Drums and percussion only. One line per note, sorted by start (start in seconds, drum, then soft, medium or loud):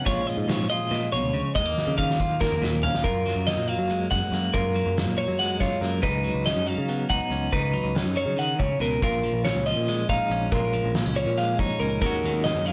0.06 kick medium
0.06 closed hi-hat medium
0.29 closed hi-hat medium
0.49 snare medium
0.49 closed hi-hat medium
0.71 closed hi-hat medium
0.92 snare soft
0.92 closed hi-hat medium
1.13 closed hi-hat medium
1.34 closed hi-hat medium
1.56 kick medium
1.56 closed hi-hat medium
1.78 snare medium
1.98 kick medium
2.10 snare medium
2.20 kick medium
2.41 kick medium
2.41 snare medium
2.52 mid tom medium
2.63 snare medium
2.84 floor tom medium
2.95 snare medium
3.04 kick medium
3.04 closed hi-hat medium
3.26 snare soft
3.26 closed hi-hat soft
3.47 snare medium
3.47 closed hi-hat medium
3.69 closed hi-hat soft
3.89 closed hi-hat medium
4.12 kick medium
4.12 snare soft
4.12 closed hi-hat medium
4.33 snare soft
4.33 closed hi-hat soft
4.54 kick medium
4.54 closed hi-hat medium
4.76 closed hi-hat medium
4.97 snare medium
4.97 closed hi-hat medium
5.18 closed hi-hat medium
5.40 snare soft
5.40 closed hi-hat medium
5.61 kick medium
5.61 snare soft
5.61 closed hi-hat medium
5.82 snare soft
5.82 closed hi-hat soft
6.03 kick medium
6.03 closed hi-hat medium
6.24 closed hi-hat medium
6.46 snare medium
6.46 closed hi-hat medium
6.67 closed hi-hat medium
6.88 closed hi-hat medium
7.10 kick medium
7.10 closed hi-hat medium
7.32 closed hi-hat soft
7.53 kick medium
7.53 closed hi-hat medium
7.74 closed hi-hat medium
7.96 snare medium
7.96 closed hi-hat medium
8.18 closed hi-hat medium
8.39 closed hi-hat medium
8.60 kick medium
8.60 closed hi-hat medium
8.81 snare soft
8.81 closed hi-hat medium
9.02 kick medium
9.02 closed hi-hat medium
9.24 closed hi-hat medium
9.45 snare medium
9.45 closed hi-hat medium
9.66 closed hi-hat medium
9.88 snare soft
9.88 closed hi-hat medium
10.09 kick medium
10.09 closed hi-hat medium
10.31 closed hi-hat soft
10.52 kick loud
10.52 closed hi-hat medium
10.73 closed hi-hat medium
10.94 snare medium
10.94 closed hi-hat medium
11.16 closed hi-hat medium
11.37 snare soft
11.37 closed hi-hat medium
11.59 kick medium
11.59 closed hi-hat medium
11.80 closed hi-hat medium
12.01 kick loud
12.01 closed hi-hat medium
12.23 snare soft
12.23 closed hi-hat medium
12.45 snare loud
12.45 closed hi-hat medium
12.66 closed hi-hat medium